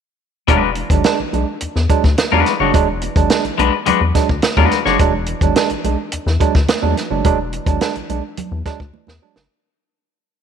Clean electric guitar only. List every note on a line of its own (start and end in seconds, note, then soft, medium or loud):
0.48 0.68 G#3 medium
0.48 0.68 D4 medium
0.48 0.69 F#4 medium
0.48 0.69 B4 medium
2.32 2.53 G#3 medium
2.32 2.53 D4 medium
2.32 2.52 F#4 medium
2.32 2.52 B4 medium
2.60 2.71 G#3 medium
2.60 2.71 D4 medium
2.60 2.71 F#4 medium
2.60 2.70 C#5 medium
3.58 3.71 G#3 medium
3.58 3.72 D4 medium
3.58 3.72 F#4 medium
3.58 3.72 B4 loud
3.86 4.00 G#3 medium
3.86 4.00 D4 medium
3.86 4.00 F#4 medium
3.86 4.00 B4 medium
4.57 4.78 G#3 medium
4.57 4.78 D4 medium
4.57 4.78 F#4 medium
4.57 4.77 B4 medium
4.86 4.97 G#3 medium
4.86 4.96 D4 medium
4.86 4.96 F#4 medium
4.86 4.96 C#5 medium